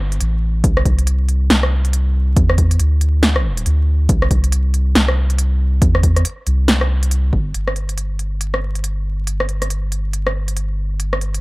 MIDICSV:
0, 0, Header, 1, 3, 480
1, 0, Start_track
1, 0, Tempo, 431655
1, 709, Time_signature, 4, 2, 24, 8
1, 12685, End_track
2, 0, Start_track
2, 0, Title_t, "Sub bass"
2, 0, Program_c, 0, 38
2, 0, Note_on_c, 0, 31, 96
2, 215, Note_off_c, 0, 31, 0
2, 231, Note_on_c, 0, 33, 95
2, 695, Note_off_c, 0, 33, 0
2, 710, Note_on_c, 0, 36, 93
2, 1655, Note_off_c, 0, 36, 0
2, 1670, Note_on_c, 0, 36, 101
2, 2615, Note_off_c, 0, 36, 0
2, 2630, Note_on_c, 0, 40, 89
2, 3095, Note_off_c, 0, 40, 0
2, 3110, Note_on_c, 0, 38, 95
2, 4055, Note_off_c, 0, 38, 0
2, 4069, Note_on_c, 0, 38, 96
2, 4534, Note_off_c, 0, 38, 0
2, 4549, Note_on_c, 0, 36, 96
2, 5494, Note_off_c, 0, 36, 0
2, 5509, Note_on_c, 0, 36, 99
2, 6454, Note_off_c, 0, 36, 0
2, 6469, Note_on_c, 0, 40, 89
2, 6934, Note_off_c, 0, 40, 0
2, 7189, Note_on_c, 0, 36, 96
2, 8134, Note_off_c, 0, 36, 0
2, 8149, Note_on_c, 0, 31, 103
2, 8374, Note_off_c, 0, 31, 0
2, 8390, Note_on_c, 0, 31, 86
2, 12685, Note_off_c, 0, 31, 0
2, 12685, End_track
3, 0, Start_track
3, 0, Title_t, "Drums"
3, 134, Note_on_c, 9, 42, 50
3, 228, Note_off_c, 9, 42, 0
3, 228, Note_on_c, 9, 42, 73
3, 340, Note_off_c, 9, 42, 0
3, 710, Note_on_c, 9, 36, 119
3, 710, Note_on_c, 9, 42, 75
3, 821, Note_off_c, 9, 36, 0
3, 821, Note_off_c, 9, 42, 0
3, 855, Note_on_c, 9, 37, 83
3, 950, Note_on_c, 9, 36, 62
3, 951, Note_on_c, 9, 42, 48
3, 966, Note_off_c, 9, 37, 0
3, 1061, Note_off_c, 9, 36, 0
3, 1062, Note_off_c, 9, 42, 0
3, 1096, Note_on_c, 9, 42, 51
3, 1190, Note_off_c, 9, 42, 0
3, 1190, Note_on_c, 9, 42, 79
3, 1301, Note_off_c, 9, 42, 0
3, 1430, Note_on_c, 9, 42, 50
3, 1541, Note_off_c, 9, 42, 0
3, 1669, Note_on_c, 9, 38, 122
3, 1669, Note_on_c, 9, 42, 78
3, 1781, Note_off_c, 9, 38, 0
3, 1781, Note_off_c, 9, 42, 0
3, 1815, Note_on_c, 9, 37, 85
3, 1926, Note_off_c, 9, 37, 0
3, 2055, Note_on_c, 9, 42, 51
3, 2149, Note_off_c, 9, 42, 0
3, 2149, Note_on_c, 9, 42, 77
3, 2261, Note_off_c, 9, 42, 0
3, 2630, Note_on_c, 9, 36, 113
3, 2630, Note_on_c, 9, 42, 76
3, 2741, Note_off_c, 9, 36, 0
3, 2741, Note_off_c, 9, 42, 0
3, 2774, Note_on_c, 9, 37, 83
3, 2869, Note_on_c, 9, 42, 52
3, 2870, Note_on_c, 9, 36, 58
3, 2885, Note_off_c, 9, 37, 0
3, 2980, Note_off_c, 9, 42, 0
3, 2981, Note_off_c, 9, 36, 0
3, 3014, Note_on_c, 9, 42, 54
3, 3108, Note_off_c, 9, 42, 0
3, 3108, Note_on_c, 9, 42, 81
3, 3219, Note_off_c, 9, 42, 0
3, 3349, Note_on_c, 9, 42, 52
3, 3460, Note_off_c, 9, 42, 0
3, 3589, Note_on_c, 9, 38, 113
3, 3589, Note_on_c, 9, 42, 77
3, 3701, Note_off_c, 9, 38, 0
3, 3701, Note_off_c, 9, 42, 0
3, 3734, Note_on_c, 9, 37, 88
3, 3845, Note_off_c, 9, 37, 0
3, 3975, Note_on_c, 9, 42, 54
3, 4070, Note_off_c, 9, 42, 0
3, 4070, Note_on_c, 9, 42, 79
3, 4181, Note_off_c, 9, 42, 0
3, 4549, Note_on_c, 9, 36, 114
3, 4549, Note_on_c, 9, 42, 81
3, 4660, Note_off_c, 9, 36, 0
3, 4660, Note_off_c, 9, 42, 0
3, 4694, Note_on_c, 9, 37, 79
3, 4789, Note_on_c, 9, 36, 60
3, 4789, Note_on_c, 9, 42, 52
3, 4806, Note_off_c, 9, 37, 0
3, 4900, Note_off_c, 9, 36, 0
3, 4901, Note_off_c, 9, 42, 0
3, 4935, Note_on_c, 9, 42, 56
3, 5029, Note_off_c, 9, 42, 0
3, 5029, Note_on_c, 9, 42, 82
3, 5141, Note_off_c, 9, 42, 0
3, 5270, Note_on_c, 9, 42, 54
3, 5381, Note_off_c, 9, 42, 0
3, 5509, Note_on_c, 9, 38, 108
3, 5509, Note_on_c, 9, 42, 80
3, 5620, Note_off_c, 9, 38, 0
3, 5620, Note_off_c, 9, 42, 0
3, 5654, Note_on_c, 9, 37, 85
3, 5765, Note_off_c, 9, 37, 0
3, 5893, Note_on_c, 9, 42, 54
3, 5988, Note_off_c, 9, 42, 0
3, 5988, Note_on_c, 9, 42, 85
3, 6100, Note_off_c, 9, 42, 0
3, 6469, Note_on_c, 9, 36, 115
3, 6469, Note_on_c, 9, 42, 84
3, 6580, Note_off_c, 9, 36, 0
3, 6580, Note_off_c, 9, 42, 0
3, 6614, Note_on_c, 9, 37, 78
3, 6709, Note_on_c, 9, 36, 59
3, 6709, Note_on_c, 9, 42, 55
3, 6725, Note_off_c, 9, 37, 0
3, 6820, Note_off_c, 9, 36, 0
3, 6821, Note_off_c, 9, 42, 0
3, 6855, Note_on_c, 9, 37, 60
3, 6855, Note_on_c, 9, 42, 55
3, 6950, Note_off_c, 9, 42, 0
3, 6950, Note_on_c, 9, 42, 85
3, 6966, Note_off_c, 9, 37, 0
3, 7061, Note_off_c, 9, 42, 0
3, 7190, Note_on_c, 9, 42, 54
3, 7301, Note_off_c, 9, 42, 0
3, 7430, Note_on_c, 9, 38, 120
3, 7430, Note_on_c, 9, 42, 83
3, 7541, Note_off_c, 9, 38, 0
3, 7541, Note_off_c, 9, 42, 0
3, 7575, Note_on_c, 9, 37, 84
3, 7687, Note_off_c, 9, 37, 0
3, 7815, Note_on_c, 9, 42, 55
3, 7910, Note_off_c, 9, 42, 0
3, 7910, Note_on_c, 9, 42, 86
3, 8021, Note_off_c, 9, 42, 0
3, 8149, Note_on_c, 9, 36, 58
3, 8260, Note_off_c, 9, 36, 0
3, 8390, Note_on_c, 9, 42, 74
3, 8501, Note_off_c, 9, 42, 0
3, 8535, Note_on_c, 9, 37, 68
3, 8629, Note_on_c, 9, 42, 51
3, 8646, Note_off_c, 9, 37, 0
3, 8740, Note_off_c, 9, 42, 0
3, 8774, Note_on_c, 9, 42, 51
3, 8869, Note_off_c, 9, 42, 0
3, 8869, Note_on_c, 9, 42, 81
3, 8980, Note_off_c, 9, 42, 0
3, 9110, Note_on_c, 9, 42, 53
3, 9221, Note_off_c, 9, 42, 0
3, 9349, Note_on_c, 9, 42, 78
3, 9461, Note_off_c, 9, 42, 0
3, 9495, Note_on_c, 9, 37, 74
3, 9606, Note_off_c, 9, 37, 0
3, 9735, Note_on_c, 9, 42, 52
3, 9830, Note_off_c, 9, 42, 0
3, 9830, Note_on_c, 9, 42, 77
3, 9941, Note_off_c, 9, 42, 0
3, 10310, Note_on_c, 9, 42, 73
3, 10421, Note_off_c, 9, 42, 0
3, 10455, Note_on_c, 9, 37, 73
3, 10550, Note_on_c, 9, 42, 47
3, 10566, Note_off_c, 9, 37, 0
3, 10661, Note_off_c, 9, 42, 0
3, 10695, Note_on_c, 9, 37, 57
3, 10695, Note_on_c, 9, 42, 51
3, 10790, Note_off_c, 9, 42, 0
3, 10790, Note_on_c, 9, 42, 75
3, 10806, Note_off_c, 9, 37, 0
3, 10901, Note_off_c, 9, 42, 0
3, 11030, Note_on_c, 9, 42, 50
3, 11141, Note_off_c, 9, 42, 0
3, 11269, Note_on_c, 9, 42, 74
3, 11380, Note_off_c, 9, 42, 0
3, 11416, Note_on_c, 9, 37, 78
3, 11527, Note_off_c, 9, 37, 0
3, 11655, Note_on_c, 9, 42, 49
3, 11750, Note_off_c, 9, 42, 0
3, 11750, Note_on_c, 9, 42, 74
3, 11861, Note_off_c, 9, 42, 0
3, 12229, Note_on_c, 9, 42, 67
3, 12340, Note_off_c, 9, 42, 0
3, 12375, Note_on_c, 9, 37, 72
3, 12470, Note_on_c, 9, 42, 48
3, 12486, Note_off_c, 9, 37, 0
3, 12581, Note_off_c, 9, 42, 0
3, 12615, Note_on_c, 9, 42, 50
3, 12685, Note_off_c, 9, 42, 0
3, 12685, End_track
0, 0, End_of_file